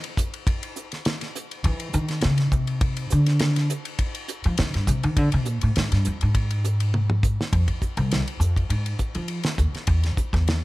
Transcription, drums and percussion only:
0.04 ride
0.17 kick, hi-hat pedal
0.34 ride
0.47 kick, ride
0.63 ride
0.76 hi-hat pedal
0.92 snare, ride
1.05 snare, ride
1.21 snare, ride
1.35 hi-hat pedal
1.51 ride
1.64 kick, ride
1.80 ride
1.93 hi-hat pedal
2.08 snare, ride
2.21 snare, ride
2.38 snare, ride
2.52 kick, hi-hat pedal
2.67 ride
2.81 kick, ride
2.97 ride
3.10 hi-hat pedal
3.26 snare, ride
3.39 snare, ride
3.56 snare, ride
3.70 hi-hat pedal
3.85 ride
3.99 kick, ride
4.15 ride
4.28 hi-hat pedal
4.44 ride
4.58 snare, ride
4.74 snare, ride
4.87 kick, hi-hat pedal
5.03 ride
5.17 kick, ride
5.32 ride
5.45 hi-hat pedal
5.61 ride
5.76 snare, ride
5.92 snare, ride
6.05 hi-hat pedal
6.21 ride
6.35 kick, ride
6.51 ride
6.64 hi-hat pedal
6.80 ride
6.94 high tom
7.10 mid tom
7.23 kick, hi-hat pedal
7.41 snare
7.53 kick, ride
7.68 kick, ride
7.82 kick, hi-hat pedal
7.97 ride
8.12 snare, ride
8.28 ride
8.41 hi-hat pedal
8.56 kick, ride
8.70 ride
8.86 ride
8.99 kick, hi-hat pedal
9.15 ride
9.28 ride
9.44 snare, ride
9.58 kick, hi-hat pedal
9.74 snare, ride
9.87 kick, ride
10.03 snare, ride
10.17 kick, hi-hat pedal
10.33 kick, snare, ride
10.48 snare, ride

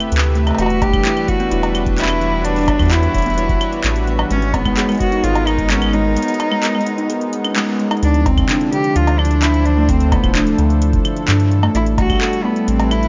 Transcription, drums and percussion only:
0.00 closed hi-hat, claves
0.12 closed hi-hat
0.18 clap
0.24 closed hi-hat
0.35 closed hi-hat
0.47 closed hi-hat, cowbell, claves
0.51 cowbell
0.55 closed hi-hat, cowbell
0.58 cowbell
0.62 cowbell
0.66 closed hi-hat, cowbell
0.82 kick, closed hi-hat, cowbell
0.93 kick, closed hi-hat, claves
1.05 clap, closed hi-hat
1.17 closed hi-hat, claves
1.28 kick, closed hi-hat
1.40 closed hi-hat
1.51 closed hi-hat
1.63 closed hi-hat, cowbell
1.75 closed hi-hat, claves
1.86 kick, closed hi-hat
1.98 clap, closed hi-hat
2.02 clap
2.06 clap, closed hi-hat, claves
2.21 closed hi-hat
2.45 closed hi-hat
2.56 closed hi-hat
2.59 closed hi-hat
2.61 closed hi-hat
2.63 closed hi-hat
2.66 closed hi-hat
2.68 kick, closed hi-hat, cowbell, claves
2.79 kick, closed hi-hat, claves
2.82 closed hi-hat
2.85 closed hi-hat
2.88 clap, closed hi-hat
2.91 closed hi-hat
2.94 closed hi-hat
2.97 closed hi-hat
3.00 closed hi-hat
3.03 closed hi-hat
3.14 kick, closed hi-hat
3.18 closed hi-hat
3.22 closed hi-hat
3.26 closed hi-hat
3.30 closed hi-hat
3.34 closed hi-hat
3.38 closed hi-hat
3.49 kick, closed hi-hat
3.61 closed hi-hat, claves
3.73 closed hi-hat
3.84 clap, closed hi-hat
3.96 closed hi-hat
4.07 closed hi-hat
4.19 cowbell, claves
4.31 closed hi-hat
4.42 closed hi-hat
4.54 kick, closed hi-hat, cowbell
4.65 kick, closed hi-hat, claves
4.77 clap, closed hi-hat
4.89 closed hi-hat, claves
4.92 closed hi-hat
4.95 closed hi-hat
4.97 kick, closed hi-hat
5.00 closed hi-hat
5.03 closed hi-hat
5.06 closed hi-hat
5.09 closed hi-hat
5.12 closed hi-hat
5.24 closed hi-hat
5.35 closed hi-hat, cowbell
5.47 closed hi-hat, claves
5.59 kick, closed hi-hat
5.70 clap, closed hi-hat
5.82 closed hi-hat, claves
5.84 claves
5.91 closed hi-hat, claves
6.17 closed hi-hat
6.22 closed hi-hat
6.28 closed hi-hat
6.34 closed hi-hat
6.40 closed hi-hat, cowbell, claves
6.52 claves
6.63 clap, closed hi-hat
6.75 claves
6.81 closed hi-hat
6.86 closed hi-hat
6.98 closed hi-hat
7.10 closed hi-hat
7.21 closed hi-hat
7.33 closed hi-hat
7.45 closed hi-hat, claves
7.56 clap, closed hi-hat
7.79 closed hi-hat
7.91 closed hi-hat, cowbell, claves
7.97 closed hi-hat
8.03 closed hi-hat
8.08 closed hi-hat
8.14 closed hi-hat
8.26 kick, closed hi-hat, cowbell
8.38 kick, closed hi-hat, claves
8.49 clap, closed hi-hat
8.61 closed hi-hat
8.73 closed hi-hat
8.84 closed hi-hat
8.96 closed hi-hat
9.07 closed hi-hat, cowbell
9.19 claves
9.25 closed hi-hat
9.31 closed hi-hat
9.42 clap, closed hi-hat
9.54 closed hi-hat
9.65 closed hi-hat
9.89 kick, closed hi-hat
10.00 closed hi-hat
10.12 kick, closed hi-hat, cowbell, claves
10.24 kick, closed hi-hat, claves
10.35 clap, closed hi-hat
10.47 closed hi-hat
10.58 closed hi-hat
10.70 closed hi-hat
10.82 closed hi-hat
10.93 kick, closed hi-hat
11.05 closed hi-hat, claves
11.17 closed hi-hat
11.28 clap, closed hi-hat
11.40 closed hi-hat
11.52 closed hi-hat
11.63 cowbell, claves
11.75 closed hi-hat
11.86 closed hi-hat
11.98 kick, closed hi-hat, cowbell
12.10 kick, closed hi-hat, claves
12.13 claves
12.16 claves
12.18 clap, closed hi-hat, claves
12.33 closed hi-hat
12.56 closed hi-hat
12.68 closed hi-hat
12.80 closed hi-hat, cowbell
12.91 closed hi-hat, claves
13.03 closed hi-hat

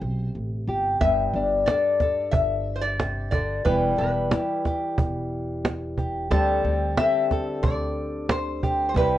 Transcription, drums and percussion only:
1.01 cajon bass, cajon slap
1.34 cajon slap
1.68 cajon slap
2.00 cajon bass, cajon slap
2.33 cajon bass
3.00 cajon slap
3.32 cajon bass
3.66 cajon bass, cajon slap
3.99 cajon slap
4.31 cajon slap
4.65 cajon bass, cajon slap
4.98 cajon bass
5.65 cajon slap
5.98 cajon bass
6.31 cajon bass, cajon slap
6.65 cajon slap
6.97 cajon slap
7.31 cajon bass, cajon slap
7.64 cajon bass
8.29 cajon slap
8.63 cajon bass
8.96 cajon bass, cajon slap

